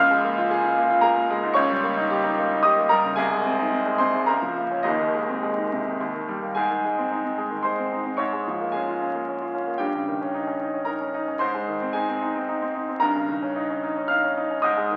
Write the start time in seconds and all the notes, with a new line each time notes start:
Already playing: C#2 F5 F6
0.11 G#3
0.24 A#3
0.38 F4
0.51 G#4
0.64 F4
0.77 A#3
0.90 F4
1.01 G#4 A#4 A#5
1.17 A#3
1.30 G#3
1.44 G#2
1.54 C#2 C#5 C#6
1.70 G3
1.83 A#3
1.97 D#4
2.10 G4
2.24 D#4
2.37 A#3
2.51 D#4
2.63 G4 D#5 D#6
2.77 A#3
2.89 G3 A#4 A#5
3.04 C#3
3.16 C2 G#4 G#5
3.32 G#3
3.45 C4
3.58 D#4
3.72 C4
3.86 G#3
3.98 C3 C5 C6
4.15 G#3
4.26 C#2 A#4 A#5
4.42 F3
4.57 A#3
4.71 C#4
4.83 D#1 D#2 D#4 D#5
5.00 D#3
5.14 G#3
5.28 C4
5.43 G#3
5.58 D#3
5.72 C3
5.86 D#3
6.00 D#2
6.14 D#3
6.28 G3
6.42 A#3
6.55 G#2 G#4 G#5
6.71 D#3
6.85 G#3
6.98 C4
7.11 D#4
7.24 C4
7.38 G#3
7.51 D#3
7.63 G#3 C5 C6
7.78 C4
7.92 D#4
8.05 C4
8.17 G#2 C#5 C#6
8.33 G#3
8.48 F3
8.61 A#3
8.72 C#4 G#4 G#5
8.88 F4
9.02 C#4
9.15 A#3
9.28 C#4
9.42 F4
9.54 C#4
9.67 A#3
9.78 G2 G4 G5
9.95 C#3
10.08 D#3
10.22 C#4
10.34 D#4
10.47 C#4
10.61 D#4
10.74 C#4
10.85 D#4 A#4 A#5
11.01 C#4
11.14 D#4
11.28 C#4
11.39 G#2 C5 C6
11.55 G#3
11.68 D#3
11.81 C4
11.93 D#4 G#4 G#5
12.08 C4
12.22 D#4
12.35 C4
12.48 D#4
12.62 C4
12.75 D#4
12.88 C4
13.00 G2 A#4 A#5
13.16 C#3
13.29 D#3
13.42 C#4
13.56 D#4
13.70 C#4
13.84 D#4
13.97 C#4
14.08 D#4 F5 F6
14.24 C#4
14.37 D#4
14.51 C#4
14.62 G#2 D#5 D#6
14.77 G#3
14.91 D#3